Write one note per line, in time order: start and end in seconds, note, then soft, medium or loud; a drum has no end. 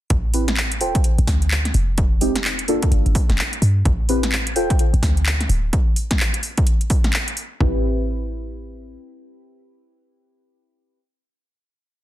0.10 0.82 A1 medium
0.10 kick loud
0.10 closed hi-hat medium
0.34 0.45 C4 medium
0.34 0.45 E4 medium
0.34 0.45 G4 medium
0.34 0.45 B4 medium
0.34 open hi-hat loud
0.48 snare medium
0.48 closed hi-hat medium
0.57 clap loud
0.72 closed hi-hat medium
0.80 0.93 D1 medium
0.80 0.97 F4 medium
0.80 0.97 A4 medium
0.80 0.97 C5 medium
0.80 0.97 G5 medium
0.80 open hi-hat loud
0.95 kick loud
0.95 closed hi-hat medium
1.04 closed hi-hat medium
1.18 1.26 A1 loud
1.18 closed hi-hat soft
1.27 1.72 D2 medium
1.27 kick medium
1.27 snare medium
1.27 open hi-hat loud
1.42 closed hi-hat soft
1.51 clap loud
1.65 snare soft
1.65 closed hi-hat medium
1.74 2.70 F1 medium
1.74 open hi-hat loud
1.98 kick loud
1.98 closed hi-hat medium
2.21 2.32 G#3 loud
2.21 2.32 C4 medium
2.21 2.32 D#4 medium
2.21 2.32 G4 loud
2.21 open hi-hat loud
2.36 snare medium
2.36 closed hi-hat medium
2.44 clap loud
2.59 closed hi-hat medium
2.68 2.81 G1 medium
2.68 3.84 A#3 medium
2.68 3.84 D4 medium
2.68 3.84 F4 medium
2.68 3.84 A4 loud
2.68 open hi-hat loud
2.82 kick loud
2.82 closed hi-hat medium
2.91 3.04 G1 medium
2.91 closed hi-hat medium
3.06 3.14 G1 medium
3.06 closed hi-hat soft
3.15 kick loud
3.15 open hi-hat loud
3.29 3.37 F1 medium
3.29 snare medium
3.29 closed hi-hat soft
3.38 clap loud
3.53 closed hi-hat medium
3.62 3.83 G2 medium
3.62 open hi-hat loud
3.85 4.57 A1 medium
3.85 kick loud
3.85 closed hi-hat medium
4.09 4.20 C4 medium
4.09 4.20 E4 medium
4.09 4.20 G4 medium
4.09 4.20 B4 medium
4.09 open hi-hat loud
4.23 snare medium
4.23 closed hi-hat medium
4.32 clap loud
4.47 closed hi-hat medium
4.56 4.68 D1 medium
4.56 4.72 F4 medium
4.56 4.72 A4 medium
4.56 4.72 C5 medium
4.56 4.72 G5 medium
4.56 open hi-hat loud
4.70 kick loud
4.70 closed hi-hat medium
4.79 closed hi-hat medium
4.93 5.01 A1 medium
4.93 closed hi-hat soft
5.03 5.47 D2 medium
5.03 kick medium
5.03 snare medium
5.03 open hi-hat loud
5.17 closed hi-hat soft
5.26 clap loud
5.41 snare soft
5.41 closed hi-hat soft
5.49 5.70 D1 medium
5.49 open hi-hat loud
5.73 kick loud
5.73 closed hi-hat medium
5.96 open hi-hat loud
6.11 kick medium
6.11 snare medium
6.11 closed hi-hat medium
6.20 clap loud
6.34 closed hi-hat medium
6.43 open hi-hat loud
6.57 kick loud
6.57 closed hi-hat medium
6.67 closed hi-hat medium
6.81 closed hi-hat soft
6.90 kick loud
6.90 open hi-hat loud
7.04 snare medium
7.04 closed hi-hat soft
7.13 clap loud
7.28 closed hi-hat medium
7.37 open hi-hat loud
7.60 8.97 A1 loud
7.60 10.99 C4 medium
7.60 10.99 E4 medium
7.60 10.99 G4 medium
7.60 10.99 B4 loud
7.60 kick loud